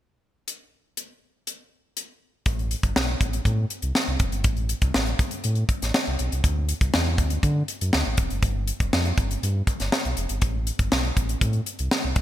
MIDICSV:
0, 0, Header, 1, 3, 480
1, 0, Start_track
1, 0, Key_signature, 0, "minor"
1, 0, Tempo, 497100
1, 455, Time_signature, 4, 2, 24, 8
1, 11796, End_track
2, 0, Start_track
2, 0, Title_t, "Sub bass"
2, 0, Program_c, 0, 38
2, 2374, Note_on_c, 0, 33, 96
2, 2660, Note_off_c, 0, 33, 0
2, 2736, Note_on_c, 0, 31, 84
2, 2831, Note_off_c, 0, 31, 0
2, 2857, Note_on_c, 0, 35, 88
2, 3047, Note_off_c, 0, 35, 0
2, 3098, Note_on_c, 0, 33, 90
2, 3288, Note_off_c, 0, 33, 0
2, 3337, Note_on_c, 0, 45, 104
2, 3528, Note_off_c, 0, 45, 0
2, 3694, Note_on_c, 0, 36, 91
2, 3791, Note_off_c, 0, 36, 0
2, 3936, Note_on_c, 0, 36, 88
2, 4032, Note_off_c, 0, 36, 0
2, 4054, Note_on_c, 0, 29, 89
2, 4151, Note_off_c, 0, 29, 0
2, 4166, Note_on_c, 0, 31, 84
2, 4293, Note_on_c, 0, 33, 99
2, 4308, Note_off_c, 0, 31, 0
2, 4581, Note_off_c, 0, 33, 0
2, 4654, Note_on_c, 0, 36, 91
2, 4751, Note_off_c, 0, 36, 0
2, 4776, Note_on_c, 0, 33, 93
2, 4968, Note_off_c, 0, 33, 0
2, 5257, Note_on_c, 0, 45, 99
2, 5448, Note_off_c, 0, 45, 0
2, 5622, Note_on_c, 0, 33, 85
2, 5717, Note_off_c, 0, 33, 0
2, 5865, Note_on_c, 0, 36, 79
2, 5959, Note_off_c, 0, 36, 0
2, 5984, Note_on_c, 0, 35, 91
2, 6078, Note_off_c, 0, 35, 0
2, 6104, Note_on_c, 0, 36, 84
2, 6198, Note_off_c, 0, 36, 0
2, 6219, Note_on_c, 0, 38, 91
2, 6505, Note_off_c, 0, 38, 0
2, 6577, Note_on_c, 0, 36, 83
2, 6674, Note_off_c, 0, 36, 0
2, 6706, Note_on_c, 0, 40, 92
2, 6935, Note_on_c, 0, 38, 82
2, 6949, Note_off_c, 0, 40, 0
2, 7127, Note_off_c, 0, 38, 0
2, 7174, Note_on_c, 0, 50, 98
2, 7367, Note_off_c, 0, 50, 0
2, 7545, Note_on_c, 0, 42, 84
2, 7639, Note_off_c, 0, 42, 0
2, 7668, Note_on_c, 0, 38, 99
2, 7761, Note_off_c, 0, 38, 0
2, 7786, Note_on_c, 0, 33, 75
2, 7880, Note_off_c, 0, 33, 0
2, 7900, Note_on_c, 0, 28, 83
2, 7996, Note_off_c, 0, 28, 0
2, 8024, Note_on_c, 0, 30, 73
2, 8118, Note_off_c, 0, 30, 0
2, 8136, Note_on_c, 0, 31, 94
2, 8423, Note_off_c, 0, 31, 0
2, 8503, Note_on_c, 0, 29, 83
2, 8598, Note_off_c, 0, 29, 0
2, 8623, Note_on_c, 0, 41, 95
2, 8813, Note_off_c, 0, 41, 0
2, 8860, Note_on_c, 0, 31, 84
2, 9051, Note_off_c, 0, 31, 0
2, 9104, Note_on_c, 0, 43, 100
2, 9293, Note_off_c, 0, 43, 0
2, 9466, Note_on_c, 0, 31, 88
2, 9559, Note_off_c, 0, 31, 0
2, 9706, Note_on_c, 0, 35, 81
2, 9799, Note_off_c, 0, 35, 0
2, 9820, Note_on_c, 0, 29, 89
2, 9916, Note_off_c, 0, 29, 0
2, 9943, Note_on_c, 0, 31, 79
2, 10038, Note_off_c, 0, 31, 0
2, 10061, Note_on_c, 0, 33, 89
2, 10346, Note_off_c, 0, 33, 0
2, 10423, Note_on_c, 0, 31, 90
2, 10517, Note_off_c, 0, 31, 0
2, 10545, Note_on_c, 0, 35, 88
2, 10733, Note_off_c, 0, 35, 0
2, 10784, Note_on_c, 0, 33, 92
2, 10972, Note_off_c, 0, 33, 0
2, 11020, Note_on_c, 0, 45, 94
2, 11210, Note_off_c, 0, 45, 0
2, 11389, Note_on_c, 0, 36, 83
2, 11480, Note_off_c, 0, 36, 0
2, 11628, Note_on_c, 0, 36, 75
2, 11719, Note_off_c, 0, 36, 0
2, 11745, Note_on_c, 0, 29, 89
2, 11796, Note_off_c, 0, 29, 0
2, 11796, End_track
3, 0, Start_track
3, 0, Title_t, "Drums"
3, 461, Note_on_c, 9, 42, 50
3, 557, Note_off_c, 9, 42, 0
3, 939, Note_on_c, 9, 42, 52
3, 1036, Note_off_c, 9, 42, 0
3, 1421, Note_on_c, 9, 42, 52
3, 1517, Note_off_c, 9, 42, 0
3, 1900, Note_on_c, 9, 42, 52
3, 1996, Note_off_c, 9, 42, 0
3, 2373, Note_on_c, 9, 42, 80
3, 2376, Note_on_c, 9, 36, 92
3, 2469, Note_off_c, 9, 42, 0
3, 2472, Note_off_c, 9, 36, 0
3, 2502, Note_on_c, 9, 42, 31
3, 2598, Note_off_c, 9, 42, 0
3, 2616, Note_on_c, 9, 42, 65
3, 2713, Note_off_c, 9, 42, 0
3, 2736, Note_on_c, 9, 36, 81
3, 2736, Note_on_c, 9, 42, 50
3, 2832, Note_off_c, 9, 42, 0
3, 2833, Note_off_c, 9, 36, 0
3, 2859, Note_on_c, 9, 38, 96
3, 2956, Note_off_c, 9, 38, 0
3, 3097, Note_on_c, 9, 36, 85
3, 3101, Note_on_c, 9, 42, 63
3, 3193, Note_off_c, 9, 36, 0
3, 3198, Note_off_c, 9, 42, 0
3, 3218, Note_on_c, 9, 42, 52
3, 3315, Note_off_c, 9, 42, 0
3, 3334, Note_on_c, 9, 36, 78
3, 3339, Note_on_c, 9, 42, 69
3, 3430, Note_off_c, 9, 36, 0
3, 3435, Note_off_c, 9, 42, 0
3, 3576, Note_on_c, 9, 42, 67
3, 3672, Note_off_c, 9, 42, 0
3, 3691, Note_on_c, 9, 42, 51
3, 3788, Note_off_c, 9, 42, 0
3, 3815, Note_on_c, 9, 38, 87
3, 3912, Note_off_c, 9, 38, 0
3, 4051, Note_on_c, 9, 42, 58
3, 4055, Note_on_c, 9, 36, 88
3, 4147, Note_off_c, 9, 42, 0
3, 4151, Note_off_c, 9, 36, 0
3, 4174, Note_on_c, 9, 42, 47
3, 4270, Note_off_c, 9, 42, 0
3, 4287, Note_on_c, 9, 42, 75
3, 4292, Note_on_c, 9, 36, 100
3, 4384, Note_off_c, 9, 42, 0
3, 4388, Note_off_c, 9, 36, 0
3, 4409, Note_on_c, 9, 42, 32
3, 4505, Note_off_c, 9, 42, 0
3, 4530, Note_on_c, 9, 42, 67
3, 4627, Note_off_c, 9, 42, 0
3, 4651, Note_on_c, 9, 42, 51
3, 4653, Note_on_c, 9, 36, 80
3, 4747, Note_off_c, 9, 42, 0
3, 4749, Note_off_c, 9, 36, 0
3, 4774, Note_on_c, 9, 38, 92
3, 4870, Note_off_c, 9, 38, 0
3, 4887, Note_on_c, 9, 42, 31
3, 4984, Note_off_c, 9, 42, 0
3, 5013, Note_on_c, 9, 36, 90
3, 5013, Note_on_c, 9, 42, 66
3, 5110, Note_off_c, 9, 36, 0
3, 5110, Note_off_c, 9, 42, 0
3, 5127, Note_on_c, 9, 42, 47
3, 5223, Note_off_c, 9, 42, 0
3, 5250, Note_on_c, 9, 42, 72
3, 5346, Note_off_c, 9, 42, 0
3, 5363, Note_on_c, 9, 42, 30
3, 5459, Note_off_c, 9, 42, 0
3, 5492, Note_on_c, 9, 36, 77
3, 5495, Note_on_c, 9, 42, 69
3, 5589, Note_off_c, 9, 36, 0
3, 5592, Note_off_c, 9, 42, 0
3, 5622, Note_on_c, 9, 42, 51
3, 5626, Note_on_c, 9, 38, 31
3, 5719, Note_off_c, 9, 42, 0
3, 5723, Note_off_c, 9, 38, 0
3, 5739, Note_on_c, 9, 38, 96
3, 5836, Note_off_c, 9, 38, 0
3, 5977, Note_on_c, 9, 42, 62
3, 6073, Note_off_c, 9, 42, 0
3, 6105, Note_on_c, 9, 42, 50
3, 6201, Note_off_c, 9, 42, 0
3, 6218, Note_on_c, 9, 36, 90
3, 6218, Note_on_c, 9, 42, 79
3, 6315, Note_off_c, 9, 36, 0
3, 6315, Note_off_c, 9, 42, 0
3, 6456, Note_on_c, 9, 42, 69
3, 6552, Note_off_c, 9, 42, 0
3, 6577, Note_on_c, 9, 36, 78
3, 6577, Note_on_c, 9, 42, 52
3, 6673, Note_off_c, 9, 36, 0
3, 6674, Note_off_c, 9, 42, 0
3, 6698, Note_on_c, 9, 38, 98
3, 6794, Note_off_c, 9, 38, 0
3, 6936, Note_on_c, 9, 36, 85
3, 6938, Note_on_c, 9, 42, 64
3, 7032, Note_off_c, 9, 36, 0
3, 7034, Note_off_c, 9, 42, 0
3, 7052, Note_on_c, 9, 42, 52
3, 7148, Note_off_c, 9, 42, 0
3, 7175, Note_on_c, 9, 36, 80
3, 7177, Note_on_c, 9, 42, 69
3, 7271, Note_off_c, 9, 36, 0
3, 7273, Note_off_c, 9, 42, 0
3, 7418, Note_on_c, 9, 42, 72
3, 7514, Note_off_c, 9, 42, 0
3, 7544, Note_on_c, 9, 42, 52
3, 7641, Note_off_c, 9, 42, 0
3, 7657, Note_on_c, 9, 38, 91
3, 7753, Note_off_c, 9, 38, 0
3, 7892, Note_on_c, 9, 42, 56
3, 7898, Note_on_c, 9, 36, 89
3, 7989, Note_off_c, 9, 42, 0
3, 7994, Note_off_c, 9, 36, 0
3, 8017, Note_on_c, 9, 42, 45
3, 8114, Note_off_c, 9, 42, 0
3, 8135, Note_on_c, 9, 42, 82
3, 8136, Note_on_c, 9, 36, 94
3, 8232, Note_off_c, 9, 42, 0
3, 8233, Note_off_c, 9, 36, 0
3, 8376, Note_on_c, 9, 42, 66
3, 8473, Note_off_c, 9, 42, 0
3, 8499, Note_on_c, 9, 36, 77
3, 8501, Note_on_c, 9, 42, 54
3, 8596, Note_off_c, 9, 36, 0
3, 8598, Note_off_c, 9, 42, 0
3, 8623, Note_on_c, 9, 38, 96
3, 8720, Note_off_c, 9, 38, 0
3, 8741, Note_on_c, 9, 42, 31
3, 8837, Note_off_c, 9, 42, 0
3, 8861, Note_on_c, 9, 36, 90
3, 8864, Note_on_c, 9, 42, 72
3, 8957, Note_off_c, 9, 36, 0
3, 8961, Note_off_c, 9, 42, 0
3, 8987, Note_on_c, 9, 42, 51
3, 9083, Note_off_c, 9, 42, 0
3, 9108, Note_on_c, 9, 42, 73
3, 9205, Note_off_c, 9, 42, 0
3, 9339, Note_on_c, 9, 36, 76
3, 9343, Note_on_c, 9, 42, 68
3, 9436, Note_off_c, 9, 36, 0
3, 9440, Note_off_c, 9, 42, 0
3, 9461, Note_on_c, 9, 42, 48
3, 9464, Note_on_c, 9, 38, 30
3, 9557, Note_off_c, 9, 42, 0
3, 9561, Note_off_c, 9, 38, 0
3, 9582, Note_on_c, 9, 38, 89
3, 9679, Note_off_c, 9, 38, 0
3, 9705, Note_on_c, 9, 42, 31
3, 9802, Note_off_c, 9, 42, 0
3, 9819, Note_on_c, 9, 42, 58
3, 9915, Note_off_c, 9, 42, 0
3, 9939, Note_on_c, 9, 42, 49
3, 10035, Note_off_c, 9, 42, 0
3, 10057, Note_on_c, 9, 42, 79
3, 10061, Note_on_c, 9, 36, 91
3, 10154, Note_off_c, 9, 42, 0
3, 10158, Note_off_c, 9, 36, 0
3, 10301, Note_on_c, 9, 42, 68
3, 10398, Note_off_c, 9, 42, 0
3, 10419, Note_on_c, 9, 42, 50
3, 10421, Note_on_c, 9, 36, 79
3, 10516, Note_off_c, 9, 42, 0
3, 10518, Note_off_c, 9, 36, 0
3, 10543, Note_on_c, 9, 38, 96
3, 10639, Note_off_c, 9, 38, 0
3, 10783, Note_on_c, 9, 36, 82
3, 10784, Note_on_c, 9, 42, 67
3, 10880, Note_off_c, 9, 36, 0
3, 10880, Note_off_c, 9, 42, 0
3, 10902, Note_on_c, 9, 42, 50
3, 10999, Note_off_c, 9, 42, 0
3, 11021, Note_on_c, 9, 36, 87
3, 11022, Note_on_c, 9, 42, 77
3, 11118, Note_off_c, 9, 36, 0
3, 11119, Note_off_c, 9, 42, 0
3, 11133, Note_on_c, 9, 42, 32
3, 11230, Note_off_c, 9, 42, 0
3, 11262, Note_on_c, 9, 42, 67
3, 11359, Note_off_c, 9, 42, 0
3, 11383, Note_on_c, 9, 42, 50
3, 11479, Note_off_c, 9, 42, 0
3, 11505, Note_on_c, 9, 38, 97
3, 11601, Note_off_c, 9, 38, 0
3, 11739, Note_on_c, 9, 42, 57
3, 11743, Note_on_c, 9, 36, 89
3, 11796, Note_off_c, 9, 36, 0
3, 11796, Note_off_c, 9, 42, 0
3, 11796, End_track
0, 0, End_of_file